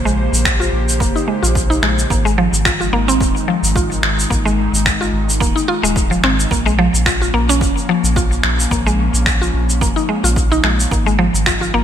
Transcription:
Already playing: A#1 C#3 A#3 G4 C5
0.05 G#3, cabasa
0.32 A#1, cabasa
0.45 finger snap, kick, cabasa
0.60 F4, cabasa
0.72 A#1
0.89 cabasa
1.00 F1 A#3, kick, cabasa
1.16 D#4, cabasa
1.28 G#3
1.43 A#1 F4, cabasa
1.55 kick, cabasa
1.70 D#4, cabasa
1.83 A#1 G#3, finger snap
1.99 cabasa
2.10 G#1 D#3 G#3 A#3 D#4, kick, cabasa
2.25 G#3, cabasa
2.38 F3
2.52 G#1, cabasa
2.65 F4, finger snap, kick, cabasa
2.80 F4, cabasa
2.93 G#1 A#3
3.08 C4, cabasa
3.20 D#1, kick, cabasa
3.36 cabasa
3.48 F3
3.63 G#1, cabasa
3.76 F4, kick, cabasa
3.92 cabasa
4.03 G#1, finger snap
4.19 cabasa
4.30 G#1 A#3, kick, cabasa
4.45 G#3, cabasa
4.73 G#1, cabasa
4.86 finger snap, kick, cabasa
5.01 F4, cabasa
5.13 G#1
5.29 cabasa
5.40 D#1 A#3, kick, cabasa
5.56 D#4, cabasa
5.68 F4
5.83 D#1 G#3, cabasa
5.96 kick, cabasa
6.11 F3, cabasa
6.23 G#1 C4, finger snap
6.40 cabasa
6.51 A#1 F3 A#3 C#4, kick, cabasa
6.66 G#3, cabasa
6.79 F3
6.94 A#1, cabasa
7.06 F4, finger snap, kick, cabasa
7.22 F4, cabasa
7.33 A#1 A#3
7.49 C#4, cabasa
7.61 F1, kick, cabasa
7.77 cabasa
7.89 F3
8.04 A#1, cabasa
8.16 F4, kick, cabasa
8.32 cabasa
8.43 A#1, finger snap
8.60 cabasa
8.71 A#1 A#3, kick, cabasa
8.86 G#3, cabasa
9.13 A#1, cabasa
9.26 finger snap, kick, cabasa
9.42 F4, cabasa
9.54 A#1
9.70 cabasa
9.81 F1 A#3, kick, cabasa
9.96 D#4, cabasa
10.09 G#3
10.24 A#1 F4, cabasa
10.36 kick, cabasa
10.52 D#4, cabasa
10.64 A#1 G#3, finger snap
10.80 cabasa
10.91 G#1 D#3 G#3 A#3 D#4, kick, cabasa
11.06 G#3, cabasa
11.19 F3
11.34 G#1, cabasa
11.46 F4, finger snap, kick, cabasa
11.61 F4, cabasa
11.74 G#1 A#3

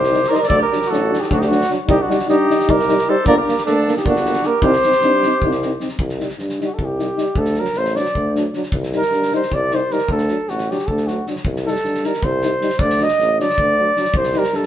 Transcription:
Already playing: C2 G4 C5
0.04 snare
0.10 G3 D#4, snare
0.24 snare
0.29 G3 D#4 A#4 C5 D5
0.34 D#5, snare
0.38 A#4 D5
0.43 snare
0.47 D2 F#3 D4 A4 D5, kick
0.58 G4
0.63 A#4
0.71 F#3 D4, snare
0.82 snare
0.87 A1 F#3 D4 F#4 A4
0.93 snare
1.10 F#3 D4, snare
1.19 D#4 F#4 G4, snare
1.24 D#4 G4 A4
1.30 D2 F#3 D4 F#4, kick
1.38 D#4 G4, snare
1.44 D4 F#4
1.49 F#3 D4, snare
1.61 snare
1.68 F#3 D4, snare
1.87 C2 G3 D#4 G4, kick
2.00 D4 F#4
2.08 G3 D#4, snare
2.19 snare
2.28 G2 G3 D#4 G4, snare
2.48 G3 D#4, snare
2.59 snare
2.68 C2 G3 D#4 G4 A#4, kick
2.79 snare
2.88 G3 D#4, snare
2.98 snare
3.07 G3 D#4 A4 C5
3.25 G1 A#3 D4 A#4 D5, kick
3.36 G4 A#4
3.45 A#3 D4, snare
3.58 snare
3.65 D2 A#3 D4 A4, snare
3.87 A#3 D4, snare
3.96 D#4 G4, snare
4.05 G1 A#3 D4 F#4, kick
4.16 snare
4.25 A#3 D4, snare
4.33 snare
4.42 A#3 D4 G4 A#4, snare
4.61 C2 C4 D#4 G4 C5, kick
4.73 snare
4.83 C4 D#4, snare
4.91 snare
5.01 G2 C4 D#4, snare
5.23 C4 D#4, snare
5.42 C2 C4 D#4, kick
5.51 snare
5.62 C4 D#4, snare
5.80 C4 D#4, snare
5.89 snare
5.99 C2, kick
6.09 snare
6.18 G3 D#4, snare
6.29 snare
6.39 G2, snare
6.49 snare
6.60 G3 D#4, snare
6.65 F#4
6.74 A4
6.79 C2, kick
6.85 G4
6.98 G3 D#4, snare
7.16 G3 D#4, snare
7.35 D2 A4, kick
7.45 snare
7.54 D4, snare
7.59 F#3 A#4
7.65 snare
7.73 A1, snare
7.78 C5
7.85 snare
7.95 D4 D5, snare
7.99 F#3
8.05 snare
8.15 D2, kick
8.35 F#3 D4, snare
8.54 F#3 D4, snare
8.63 snare
8.72 C2, kick
8.83 snare
8.92 G3 D#4, snare
8.97 A#4
9.02 snare
9.12 G2, snare
9.22 snare
9.32 G3 D#4 C5, snare
9.42 snare
9.52 C2 D5, kick
9.71 G3 D#4 C5, snare
9.90 G3 D#4 A#4, snare
9.98 snare
10.09 D2 A4, kick
10.18 snare
10.28 F#3 D4, snare
10.48 A1 F#4, snare
10.58 snare
10.70 F#3 D4 G4, snare
10.79 snare
10.87 D2 A4, kick
10.97 snare
11.07 F#3 D4 F#4, snare
11.27 F#3 D4, snare
11.36 snare
11.45 C2, kick
11.56 snare
11.66 G3 D#4 A4, snare
11.75 snare
11.85 G2, snare
11.95 snare
12.04 G3 D#4 A#4, snare
12.14 snare
12.23 C2 C5, kick
12.42 G3 D#4, snare
12.61 G3 D#4, snare
12.70 snare
12.79 D2 D5, kick
12.90 snare
12.99 F#3 D4, snare
13.03 D#5
13.08 snare
13.19 A1, snare
13.40 F#3 D4 D5, snare
13.50 snare
13.58 D2, kick
13.77 F#3 D4
13.96 F#3 D4, snare
14.05 snare
14.14 C2 C5, kick
14.23 snare
14.33 G3 D#4, snare
14.38 A#4
14.43 snare
14.53 G2 A4, snare
14.63 snare

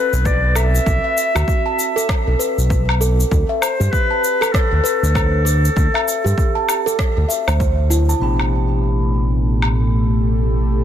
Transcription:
Already playing: C4 B4 B5
0.13 B1, shaker
0.25 B4 D5, kick, shaker
0.56 A4 E5, low woodblock, shaker
0.75 shaker
0.86 B1 A4, kick, shaker
1.04 E5
1.18 shaker
1.35 D2 F#4, low woodblock, shaker
1.48 kick, shaker
1.66 A5
1.79 shaker
1.96 A4, shaker
2.09 kick, cross-stick, low woodblock, shaker
2.27 B1 A4
2.39 B4, shaker
2.58 B1, shaker
2.70 B4, kick, shaker
2.89 low woodblock
3.01 A4, shaker
3.20 shaker
3.31 D2 A4, kick, shaker
3.49 E5
3.61 C5, low woodblock, shaker
3.80 G2 G4, shaker
3.91 B4, kick, shaker
4.11 A5
4.24 shaker
4.41 A4, low woodblock, shaker
4.52 A4, kick, cross-stick, shaker
4.71 D2 A4
4.84 B4, shaker
5.03 D2, shaker
5.15 C5, kick, low woodblock, shaker
5.45 A4, shaker
5.65 shaker
5.76 D2 A4, kick, shaker
5.94 E5, low woodblock
6.08 shaker
6.24 G2 G4, shaker
6.38 kick, shaker
6.55 A5
6.69 low woodblock, shaker
6.86 A4, shaker
6.99 kick, cross-stick, shaker
7.17 D2 A4
7.29 E5, shaker
7.48 D2 C5, low woodblock, shaker
7.60 C5, kick, shaker
7.90 E4, shaker
8.09 A5, shaker
8.19 A1 A2 B2 E3 A3 B3 D4 B5
8.23 G4
8.40 low woodblock
8.45 A3
8.78 G4
9.09 A4
9.62 low woodblock

